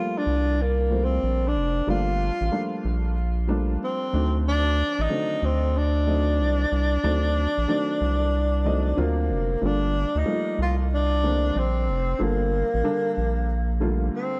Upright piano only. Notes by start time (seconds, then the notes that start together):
Already playing: F3 G3 A3 A#3 F4
0.90 F3 G3 A3 A#3 C4
1.87 F3 G3 A3 A#3 D4
2.51 F3 G3 A3 A#3 D4
3.48 F3 G3 A3 A#3 D4
4.12 D#3 F#3 A3 C4 D4
5.09 D3 D#3 F#3 A3 C4
6.06 D#3 F#3 A3 C4 D#5
7.03 D#3 F#3 A3 C4 D4
7.68 D#3 F#3 A3 C4 D4
8.65 D#3 F#3 A3 C4 D#5
8.97 D3 F#3 A#3 C4 F4
9.61 D3 G3 A3 A#3 F4
10.25 F3 G3 A3 A#3 D#4
10.33 F4
11.23 D3 G3 A3 A#3 C4
12.19 D3 G3 A#3 F4 A4
12.83 D3 G3 A#3 D4 A4
13.80 D3 G3 A3 A#3 F4